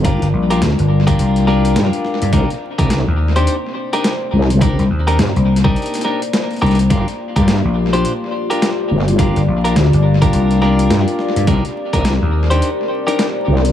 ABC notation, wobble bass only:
X:1
M:4/4
L:1/16
Q:"Swing 16ths" 1/4=105
K:Gm
V:1 name="Wobble bass" clef=bass
G,,, z3 D,, z6 z G,, z3 | C,, z2 C,,2 z8 z C,,2- | C,, z3 G,, z8 z3 | G,,, z2 G,,2 z8 z G,,,2- |
G,,, z3 D,, z6 z G,, z3 | C,, z2 C,,2 z8 z C,,2 |]